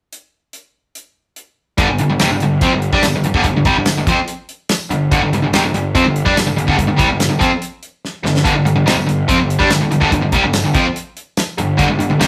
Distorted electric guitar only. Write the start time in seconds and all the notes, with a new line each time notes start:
1.78 G2 D3
1.89 G2 D3
2.00 G2 D3
2.10 G2 D3
2.20 F2 C3
2.32 G2 D3
2.43 G2 D3
2.62 F3 C4
2.73 G2 D3
2.93 G3 D4
3.05 G2 D3
3.15 G2 D3
3.25 G2 D3
3.35 G2 D3
3.46 G2 D3
3.56 G2 D3
3.66 C3 G3
3.77 G2 D3
3.97 G2 D3
4.08 F3 C4
4.90 G2 D3
5.11 G2 D3
5.22 G2 D3
5.33 G2 D3
5.42 G2 D3
5.53 F2 C3
5.64 G2 D3
5.74 G2 D3
5.95 F3 C4
6.05 G2 D3
6.25 G3 D4
6.36 G2 D3
6.47 G2 D3
6.57 G2 D3
6.68 G2 D3
6.78 G2 D3
6.88 G2 D3
6.98 C3 G3
7.09 G2 D3
7.29 G2 D3
7.39 F3 C4
8.23 G2 D3
8.44 G2 D3
8.54 G2 D3
8.65 G2 D3
8.76 G2 D3
8.86 F2 C3
8.96 G2 D3
9.07 G2 D3
9.28 F3 C4
9.39 G2 D3
9.59 G3 D4
9.71 G2 D3
9.81 G2 D3
9.91 G2 D3
10.00 G2 D3
10.11 G2 D3
10.21 G2 D3
10.32 C3 G3
10.43 G2 D3
10.64 G2 D3
10.74 F3 C4
11.58 G2 D3
11.77 G2 D3
11.88 G2 D3
11.99 G2 D3
12.10 G2 D3
12.20 F2 C3